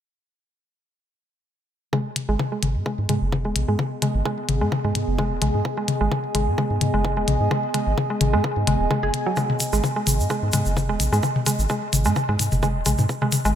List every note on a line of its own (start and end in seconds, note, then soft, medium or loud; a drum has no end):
1.93 1.98 G#3 medium
1.93 13.55 B3 medium
1.93 kick loud
1.93 high tom medium
2.10 13.55 G#4 medium
2.16 closed hi-hat medium
2.16 high tom soft
2.24 13.55 D#5 medium
2.29 2.37 G#1 medium
2.29 2.33 G#3 medium
2.39 kick loud
2.39 high tom medium
2.51 2.56 G#3 medium
2.51 13.55 G#5 medium
2.63 2.77 G#1 medium
2.63 closed hi-hat medium
2.63 high tom medium
2.75 2.83 G#2 medium
2.86 2.91 G#3 medium
2.86 kick loud
2.86 high tom soft
2.98 3.06 G#2 loud
3.09 3.18 G#2 medium
3.09 3.14 G#3 medium
3.09 closed hi-hat medium
3.09 high tom medium
3.22 3.47 F#1 loud
3.32 kick loud
3.32 high tom medium
3.45 3.53 D#1 medium
3.45 3.49 G#3 medium
3.56 3.65 A#1 medium
3.56 closed hi-hat medium
3.56 high tom soft
3.68 3.76 G#2 medium
3.68 3.72 G#3 medium
3.79 kick loud
3.79 high tom medium
4.02 4.07 G#3 medium
4.02 closed hi-hat medium
4.02 high tom medium
4.15 4.23 G#1 loud
4.25 4.30 G#3 medium
4.25 kick loud
4.25 high tom soft
4.49 4.63 G#1 medium
4.49 closed hi-hat medium
4.49 high tom medium
4.61 4.69 G#2 medium
4.61 4.65 G#3 medium
4.72 kick loud
4.72 high tom medium
4.84 4.92 G#2 loud
4.84 4.89 G#3 medium
4.95 5.05 G#2 medium
4.95 closed hi-hat medium
4.95 high tom soft
5.08 5.33 F#1 loud
5.18 5.23 G#3 medium
5.18 kick loud
5.18 high tom medium
5.31 5.39 D#1 medium
5.42 5.51 A#1 medium
5.42 5.47 G#3 medium
5.42 closed hi-hat medium
5.42 high tom medium
5.54 5.62 G#2 medium
5.65 kick loud
5.65 high tom soft
5.78 5.82 G#3 medium
5.88 closed hi-hat medium
5.88 high tom medium
6.01 6.09 G#1 loud
6.01 6.05 G#3 medium
6.12 kick loud
6.12 high tom medium
6.35 6.49 G#1 medium
6.35 6.40 G#3 medium
6.35 closed hi-hat medium
6.35 high tom soft
6.47 6.55 G#2 medium
6.58 6.63 G#3 medium
6.58 kick loud
6.58 high tom medium
6.71 6.78 G#2 loud
6.81 6.91 G#2 medium
6.81 closed hi-hat medium
6.81 high tom medium
6.94 7.19 F#1 loud
6.94 6.98 G#3 medium
7.05 kick loud
7.05 high tom soft
7.17 7.25 D#1 medium
7.17 7.21 G#3 medium
7.28 7.37 A#1 medium
7.28 closed hi-hat medium
7.28 high tom medium
7.40 7.48 G#2 medium
7.51 7.56 G#3 medium
7.51 kick loud
7.51 high tom medium
7.74 7.79 G#3 medium
7.74 closed hi-hat medium
7.74 high tom soft
7.87 7.95 G#1 medium
7.98 kick loud
7.98 high tom medium
8.10 8.14 G#3 medium
8.21 8.35 G#1 medium
8.21 closed hi-hat medium
8.21 high tom medium
8.33 8.41 G#2 medium
8.33 8.38 G#3 medium
8.44 kick loud
8.44 high tom soft
8.57 8.65 G#2 loud
8.67 8.77 G#1 medium
8.67 8.75 G#3 medium
8.67 closed hi-hat medium
8.67 high tom medium
8.80 8.88 D#1 loud
8.91 8.98 G#3 medium
8.91 kick loud
8.91 high tom medium
9.03 9.11 F#1 medium
9.03 9.07 G#4 medium
9.14 closed hi-hat medium
9.14 high tom soft
9.26 9.29 F#3 medium
9.37 9.42 G#3 medium
9.37 kick loud
9.37 high tom medium
9.37 shaker soft
9.50 mid tom medium
9.60 closed hi-hat medium
9.60 high tom soft
9.60 shaker medium
9.73 9.81 G#1 medium
9.73 9.79 G#3 medium
9.73 shaker medium
9.84 kick loud
9.84 high tom medium
9.84 shaker soft
9.96 10.00 G#3 medium
10.07 10.21 G#1 medium
10.07 closed hi-hat medium
10.07 high tom medium
10.07 shaker medium
10.20 10.27 G#2 medium
10.20 shaker soft
10.30 10.37 G#3 medium
10.30 kick loud
10.30 high tom soft
10.30 shaker soft
10.43 10.51 G#2 loud
10.53 10.63 G#2 medium
10.53 10.58 G#3 medium
10.53 closed hi-hat medium
10.53 high tom medium
10.53 shaker medium
10.65 10.91 F#1 loud
10.65 shaker soft
10.77 kick loud
10.77 high tom medium
10.77 shaker soft
10.89 10.97 D#1 medium
10.89 10.95 G#3 medium
11.00 11.09 A#1 medium
11.00 closed hi-hat medium
11.00 high tom soft
11.00 shaker medium
11.12 11.20 G#2 medium
11.12 11.17 G#3 medium
11.12 shaker soft
11.23 kick loud
11.23 high tom medium
11.23 shaker soft
11.36 mid tom medium
11.46 11.54 G#3 medium
11.46 closed hi-hat medium
11.46 high tom medium
11.46 shaker medium
11.59 11.67 G#1 loud
11.59 shaker soft
11.69 11.75 G#3 medium
11.69 kick loud
11.69 high tom soft
11.69 shaker soft
11.93 12.07 G#1 medium
11.93 closed hi-hat medium
11.93 high tom medium
11.93 shaker medium
12.05 12.13 G#2 medium
12.05 12.12 G#3 medium
12.05 shaker soft
12.16 kick loud
12.16 high tom medium
12.16 shaker soft
12.29 12.37 G#2 loud
12.29 12.33 G#3 medium
12.39 12.49 G#2 medium
12.39 closed hi-hat medium
12.39 high tom soft
12.39 shaker medium
12.52 12.77 F#1 loud
12.52 mid tom medium
12.52 shaker soft
12.63 12.70 G#3 medium
12.63 kick loud
12.63 high tom medium
12.63 shaker soft
12.75 12.83 D#1 medium
12.86 12.95 A#1 medium
12.86 12.91 G#3 medium
12.86 closed hi-hat medium
12.86 high tom medium
12.86 shaker medium
12.98 13.06 G#2 medium
12.98 mid tom medium
12.98 shaker soft
13.09 kick loud
13.09 high tom soft
13.09 shaker soft
13.22 13.28 G#3 medium
13.22 mid tom medium
13.32 closed hi-hat medium
13.32 high tom medium
13.32 shaker medium
13.45 13.53 G#1 loud
13.45 13.49 G#3 medium
13.45 shaker soft